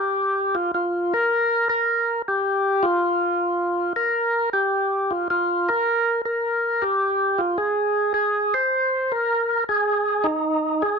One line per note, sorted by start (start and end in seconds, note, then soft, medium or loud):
0.00 0.56 G4 medium
0.55 0.72 F4 medium
0.74 1.13 F4 medium
1.14 1.68 A#4 loud
1.69 2.22 A#4 medium
2.28 2.86 G4 medium
2.83 3.93 F4 loud
3.96 4.50 A#4 medium
4.53 5.13 G4 medium
5.11 5.28 F4 medium
5.30 5.70 F4 medium
5.69 6.22 A#4 loud
6.25 6.84 A#4 medium
6.82 7.41 G4 medium
7.38 7.58 F4 medium
7.58 8.13 G#4 medium
8.14 8.54 G#4 medium
8.54 9.13 C5 medium
9.12 9.64 A#4 medium
9.69 10.27 G#4 medium
10.24 10.83 D#4 medium
10.82 10.99 G#4 medium